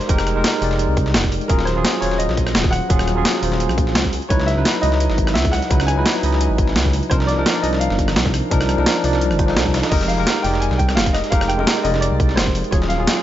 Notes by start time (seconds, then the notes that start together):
Already playing: G#3 D#4 G4 A#4 C5 D5
0.01 snare, closed hi-hat
0.08 F1 G#3 D#4 G4 A#4, kick, closed hi-hat
0.18 cross-stick, snare
0.27 cross-stick, closed hi-hat
0.35 F1 G#3 D#4 G4 A#4
0.44 snare, closed hi-hat, open hi-hat
0.60 F1 G#3 D#4 G4, closed hi-hat, open hi-hat
0.64 D5
0.71 snare
0.79 closed hi-hat
0.89 C2
0.97 kick, closed hi-hat
1.06 snare
1.14 F1, snare, closed hi-hat
1.24 kick, snare
1.32 closed hi-hat, open hi-hat
1.41 closed hi-hat
1.48 D#1 F#3 C#4 F4 G#4 A#4, kick, closed hi-hat
1.59 snare
1.65 C5, snare, closed hi-hat
1.75 D#1 F#3 C#4 F4 G#4
1.85 snare, closed hi-hat
1.94 snare
2.00 D#1 F#3 C#4 F4 C#5, closed hi-hat, open hi-hat
2.04 C5
2.12 snare
2.18 D#5, closed hi-hat
2.29 A#1, snare
2.37 kick, closed hi-hat
2.47 cross-stick, snare
2.55 D#1, snare, closed hi-hat
2.64 kick, snare
2.71 F#5, cross-stick, closed hi-hat, open hi-hat
2.89 D#1 F#3 C#4 F4 G#4, kick, closed hi-hat
2.99 cross-stick, snare
3.07 cross-stick, closed hi-hat
3.16 D#1 F#3 C#4 F4 G#4
3.25 snare, closed hi-hat, open hi-hat
3.40 D#1 F#3 C#4 F4, closed hi-hat, open hi-hat
3.45 C5
3.52 snare
3.60 closed hi-hat
3.69 A#1, cross-stick
3.78 kick, closed hi-hat
3.87 snare
3.95 C#2, snare, closed hi-hat
4.04 kick, snare
4.13 closed hi-hat, open hi-hat
4.22 closed hi-hat
4.29 C#2 F#3 D#4 E4 B4 C#5, kick, closed hi-hat
4.40 snare
4.46 E5, snare, closed hi-hat
4.56 C#2 F#3 D#4 E4 B4
4.65 snare, closed hi-hat
4.75 snare
4.81 C#2 F#3 D#4 E4 D#5, closed hi-hat, open hi-hat
4.85 D#5
4.92 snare
5.00 closed hi-hat
5.10 G#1, snare
5.18 kick, closed hi-hat
5.27 cross-stick, snare
5.34 C#2 E5, snare, closed hi-hat
5.45 kick, closed hi-hat
5.52 F#5, cross-stick, snare, open hi-hat
5.62 snare, closed hi-hat
5.69 C#2 F#3 D#4 E4 B4, kick, closed hi-hat
5.80 cross-stick, snare
5.87 G#5, cross-stick, closed hi-hat
5.96 C#2 F#3 D#4 E4 B4
6.06 snare, closed hi-hat, open hi-hat
6.21 C#2 F#3 D#4 E4, closed hi-hat, open hi-hat
6.25 D#5
6.33 snare
6.41 closed hi-hat
6.50 G#1
6.58 kick, closed hi-hat
6.68 snare
6.76 C#2, snare, closed hi-hat
6.85 kick, snare
6.93 closed hi-hat, open hi-hat
7.03 closed hi-hat
7.10 C2 F3 D4 D#4 A#4 C5, kick, closed hi-hat
7.20 snare
7.27 D5, snare, closed hi-hat
7.37 C2 F3 D4 D#4 A#4
7.46 snare, closed hi-hat
7.55 snare
7.61 C2 F3 D4 D#4 D#5, closed hi-hat, open hi-hat
7.66 D5
7.73 snare
7.80 F5, closed hi-hat
7.90 G1, snare
7.99 kick, closed hi-hat
8.08 cross-stick, snare
8.16 C2, snare, closed hi-hat
8.25 kick, snare
8.34 cross-stick, closed hi-hat, open hi-hat
8.50 C2 F3 D4 D#4 A#4, kick, closed hi-hat
8.61 cross-stick, snare, closed hi-hat
8.69 cross-stick, closed hi-hat
8.77 C2 F3 D4 D#4 A#4, high bongo
8.86 snare, closed hi-hat, open hi-hat
8.96 closed hi-hat
9.03 C2 F3 D4 D#4 D5, closed hi-hat, open hi-hat
9.13 snare, closed hi-hat
9.21 closed hi-hat
9.31 G1, cross-stick
9.38 F3 D4 D#4 C5, kick, closed hi-hat
9.46 F3 D4 D#4, snare
9.50 A4
9.57 C2, snare, closed hi-hat
9.66 kick, snare
9.74 snare, closed hi-hat, open hi-hat
9.83 snare, closed hi-hat
9.90 F1 G#3 D#4 G4 A#4 D#5, kick, closed hi-hat, crash
10.01 snare
10.08 F5, snare, closed hi-hat
10.17 F1 G#3 D#4 G4 A#4
10.27 snare, closed hi-hat
10.36 snare
10.42 F1 G#3 D#4 G4 G5, closed hi-hat, open hi-hat
10.46 D5
10.54 snare
10.60 G#5, closed hi-hat
10.71 C2, snare
10.78 G5, kick, closed hi-hat
10.89 cross-stick, snare
10.95 F1 F5, snare, closed hi-hat
11.06 kick, closed hi-hat
11.13 D#5, cross-stick, snare, open hi-hat
11.24 snare, closed hi-hat
11.30 F1 G#3 D#4 G4 A#4 F5, kick, closed hi-hat
11.41 cross-stick, snare
11.48 G5, cross-stick, closed hi-hat
11.58 F1 G#3 D#4 G4 A#4, high bongo
11.67 snare, closed hi-hat, open hi-hat
11.82 F1 G#3 D#4 G4 D#5, closed hi-hat, open hi-hat, high bongo
11.87 D5
11.94 snare
12.01 D5, closed hi-hat
12.12 C2
12.20 kick, closed hi-hat
12.29 snare
12.36 F1 C5, snare, closed hi-hat
12.47 kick, snare
12.55 closed hi-hat, open hi-hat
12.64 closed hi-hat
12.71 D#1 F#3 C#4 F4 G#4 C#5, kick, closed hi-hat
12.82 snare
12.89 F5, snare, closed hi-hat
12.98 D#1 F#3 C#4 F4 G#4
13.07 snare, closed hi-hat
13.17 snare